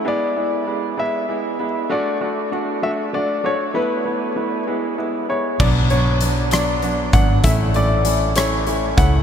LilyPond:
<<
  \new Staff \with { instrumentName = "Grand piano" } { \time 6/8 \key e \mixolydian \tempo 4. = 65 d''4. e''4 r8 | d''4 r8 e''8 d''8 cis''8 | b'2 r8 cis''8 | d''8 cis''4 d''4 fis''8 |
e''8 d''4 cis''4 fis''8 | }
  \new Staff \with { instrumentName = "Grand piano" } { \time 6/8 \key e \mixolydian <gis b e'>8 <gis b e'>8 <gis b e'>8 <gis b e'>8 <gis b e'>8 <gis b e'>8 | <a d' fis'>8 <a d' fis'>8 <a d' fis'>8 <a d' fis'>8 <a d' fis'>8 <a d' fis'>8 | <a b e'>8 <a b e'>8 <a b e'>8 <gis b e'>8 <gis b e'>8 <gis b e'>8 | <fis b d'>8 <fis b d'>8 <fis b d'>8 <fis b d'>8 <fis b d'>8 <fis b d'>8 |
<a cis' e'>8 <a cis' e'>8 <a cis' e'>8 <a cis' e'>8 <a cis' e'>8 <a cis' e'>8 | }
  \new Staff \with { instrumentName = "Fingered electric bass" } { \clef bass \time 6/8 \key e \mixolydian r2. | r2. | r2. | b,,2~ b,,8 gis,,8 |
a,,2~ a,,8 cis,8 | }
  \new DrumStaff \with { instrumentName = "Drums" } \drummode { \time 6/8 r4. r4. | r4. r4. | r4. r4. | <cymc bd>8 hh8 hh8 <hh ss>8 hh8 <hh bd>8 |
<hh bd>8 hh8 hh8 <hh ss>8 hh8 <hh bd>8 | }
>>